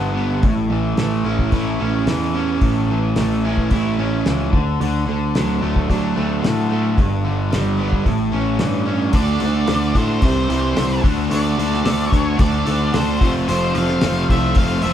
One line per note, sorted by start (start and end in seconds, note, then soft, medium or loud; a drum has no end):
0.00 0.42 G1 medium
0.00 0.44 D3 medium
0.00 0.17 G3 medium
0.00 0.44 G3 medium
0.00 0.16 B3 medium
0.00 0.43 D4 medium
0.17 0.44 B3 medium
0.43 0.69 A1 medium
0.43 1.81 A2 medium
0.43 kick loud
0.43 open hi-hat soft
0.70 0.96 A1 medium
0.70 2.07 E3 medium
0.96 1.24 A1 medium
0.96 3.16 A3 medium
0.96 snare loud
0.96 open hi-hat soft
1.25 1.52 A1 medium
1.25 1.80 C#4 medium
1.25 2.62 E4 medium
1.39 kick medium
1.52 1.79 A1 medium
1.52 3.16 A3 medium
1.52 2.90 E4 medium
1.52 kick medium
1.52 open hi-hat soft
1.81 2.06 A1 medium
1.81 2.35 C#4 medium
2.07 2.59 E2 medium
2.07 2.89 E3 medium
2.07 snare medium
2.07 open hi-hat soft
2.36 3.43 C#4 medium
2.61 3.14 A1 medium
2.61 3.99 A2 medium
2.61 kick medium
2.61 open hi-hat soft
2.90 4.24 E3 medium
3.16 3.69 A1 medium
3.16 4.53 A3 medium
3.16 snare medium
3.16 open hi-hat soft
3.45 3.98 C#4 medium
3.45 4.54 E4 medium
3.58 kick medium
3.71 3.97 A1 medium
3.71 4.54 A3 medium
3.71 4.53 E4 medium
3.71 kick medium
3.71 open hi-hat soft
3.98 4.25 A1 medium
3.98 4.53 C#4 medium
4.25 4.52 C#2 medium
4.25 4.52 E3 medium
4.25 snare loud
4.25 open hi-hat soft
4.53 4.79 D2 medium
4.53 4.80 D3 medium
4.53 kick medium
4.80 5.06 D2 medium
4.80 5.05 D3 medium
4.80 open hi-hat soft
5.06 5.34 D2 medium
5.06 6.41 D3 medium
5.35 5.61 D2 medium
5.35 6.71 F#3 medium
5.35 snare medium
5.35 open hi-hat soft
5.62 5.88 D2 medium
5.62 6.14 A3 medium
5.62 6.98 D4 medium
5.76 kick medium
5.90 6.16 D2 medium
5.90 6.99 F#3 medium
5.90 6.98 D4 medium
5.90 kick medium
5.90 open hi-hat soft
6.15 6.43 D2 medium
6.15 6.68 A3 medium
6.42 6.99 A2 medium
6.42 6.97 D3 medium
6.42 snare loud
6.42 open hi-hat soft
6.69 6.97 A3 medium
6.97 7.50 G1 medium
6.97 8.03 G2 medium
6.97 kick loud
6.97 open hi-hat soft
7.24 8.06 D3 medium
7.50 8.04 G1 medium
7.50 8.06 G3 medium
7.50 snare loud
7.50 open hi-hat soft
7.77 8.06 B3 medium
7.77 8.07 D4 medium
7.93 kick medium
8.04 8.32 A1 medium
8.04 9.14 A2 medium
8.04 kick medium
8.04 open hi-hat soft
8.32 8.59 A1 medium
8.32 8.84 C#4 medium
8.59 9.12 G2 medium
8.59 9.11 E3 medium
8.59 snare loud
8.59 open hi-hat soft
8.85 9.12 C#4 medium
9.12 9.37 D2 medium
9.12 9.39 D3 medium
9.12 9.39 A3 medium
9.12 9.40 D4 loud
9.12 9.40 F#4 medium
9.12 9.97 D5 loud
9.12 kick loud
9.12 open hi-hat medium
9.40 9.65 D2 medium
9.40 9.65 D3 medium
9.40 9.66 A3 medium
9.40 9.66 D4 medium
9.40 9.67 F#4 medium
9.40 open hi-hat soft
9.67 9.92 D2 medium
9.67 9.94 D3 medium
9.67 9.94 A3 medium
9.67 9.94 D4 medium
9.67 9.95 F#4 medium
9.67 snare loud
9.67 open hi-hat medium
9.95 10.19 A2 medium
9.95 10.21 D3 medium
9.95 10.21 A3 medium
9.95 10.21 D4 medium
9.95 10.22 F#4 loud
9.95 11.01 C5 medium
9.95 kick medium
9.95 open hi-hat soft
10.22 10.46 C2 medium
10.22 10.47 C3 medium
10.22 10.48 E3 medium
10.22 10.48 G3 loud
10.22 10.49 C4 loud
10.22 10.49 G4 loud
10.22 kick medium
10.22 open hi-hat medium
10.48 10.73 C2 medium
10.48 10.73 C3 medium
10.48 10.74 E3 medium
10.48 10.75 G3 medium
10.48 10.75 C4 medium
10.48 10.76 G4 medium
10.48 open hi-hat soft
10.74 11.00 C2 medium
10.74 11.02 C3 medium
10.74 11.02 E3 medium
10.74 11.02 G3 medium
10.74 11.03 C4 medium
10.74 11.03 G4 medium
10.74 snare loud
10.74 open hi-hat medium
11.03 11.27 D2 medium
11.03 11.29 D3 medium
11.03 11.31 A3 medium
11.03 11.30 D4 medium
11.03 11.32 F#4 medium
11.03 kick loud
11.03 open hi-hat soft
11.31 11.55 D2 medium
11.31 11.58 D3 medium
11.31 11.59 A3 medium
11.31 11.58 D4 loud
11.31 11.59 F#4 medium
11.31 12.07 D5 medium
11.31 open hi-hat medium
11.58 11.82 D2 medium
11.58 11.84 D3 medium
11.58 11.85 A3 medium
11.58 11.85 D4 medium
11.58 11.85 F#4 medium
11.58 open hi-hat soft
11.74 snare soft
11.85 12.08 D2 medium
11.85 12.11 D3 medium
11.85 12.13 A3 medium
11.85 12.12 D4 medium
11.85 12.12 F#4 medium
11.85 snare loud
11.85 open hi-hat medium
12.07 12.40 C#5 medium
12.12 12.36 D2 medium
12.12 12.37 D3 medium
12.12 12.37 A3 loud
12.12 12.38 D4 loud
12.12 12.39 F#4 medium
12.12 kick medium
12.12 open hi-hat medium
12.38 12.63 D2 medium
12.38 12.64 D3 medium
12.38 12.64 A3 medium
12.38 12.65 D4 medium
12.38 12.65 F#4 medium
12.38 12.94 D5 medium
12.38 kick loud
12.38 open hi-hat medium
12.65 12.90 D2 medium
12.65 12.92 D3 medium
12.65 12.93 A3 medium
12.65 12.93 D4 loud
12.65 12.93 F#4 medium
12.65 open hi-hat medium
12.93 13.18 D2 medium
12.93 13.19 D3 medium
12.93 13.20 A3 medium
12.93 13.20 D4 medium
12.93 13.20 F#4 medium
12.93 13.32 C5 medium
12.93 snare loud
12.93 open hi-hat medium
13.21 13.44 F1 medium
13.21 13.47 F2 medium
13.21 13.48 C3 medium
13.21 13.48 F3 medium
13.21 13.49 A3 loud
13.21 13.49 C4 loud
13.21 13.50 F4 loud
13.21 kick medium
13.21 open hi-hat medium
13.48 13.72 F1 medium
13.48 13.73 F2 medium
13.48 13.74 C3 medium
13.48 13.76 F3 loud
13.48 14.93 A3 medium
13.48 13.76 A3 loud
13.48 13.77 C4 loud
13.48 14.93 F4 medium
13.48 13.77 F4 loud
13.48 14.93 C5 medium
13.48 13.76 C5 loud
13.48 open hi-hat medium
13.74 13.99 F1 medium
13.74 14.02 F2 medium
13.74 14.02 C3 medium
13.74 14.02 F3 medium
13.74 14.03 A3 medium
13.74 14.04 C4 medium
13.74 14.04 F4 medium
13.74 14.25 F5 medium
13.74 open hi-hat soft
13.88 snare soft
14.01 14.26 F1 loud
14.01 14.29 F2 medium
14.01 14.30 C3 medium
14.01 14.29 F3 medium
14.01 14.30 A3 medium
14.01 14.30 C4 medium
14.01 snare loud
14.01 open hi-hat medium
14.06 14.31 F4 medium
14.29 14.53 C2 medium
14.29 14.56 F2 medium
14.29 14.57 C3 medium
14.29 14.56 F3 medium
14.29 14.57 A3 medium
14.29 14.58 C4 loud
14.29 14.58 F4 loud
14.29 14.57 E5 loud
14.29 kick medium
14.29 open hi-hat medium
14.55 14.79 F1 medium
14.55 14.82 F2 medium
14.55 14.82 C3 loud
14.55 14.84 F3 medium
14.55 14.84 A3 medium
14.55 14.83 F5 medium
14.55 kick loud
14.55 open hi-hat medium
14.59 14.85 C4 medium
14.59 14.85 F4 medium
14.82 14.93 F1 medium
14.82 14.93 F2 medium
14.82 14.93 C3 medium
14.82 14.93 F3 medium
14.82 14.93 A3 medium
14.82 14.93 C4 loud
14.82 14.93 F4 loud
14.82 14.93 E5 medium
14.82 open hi-hat soft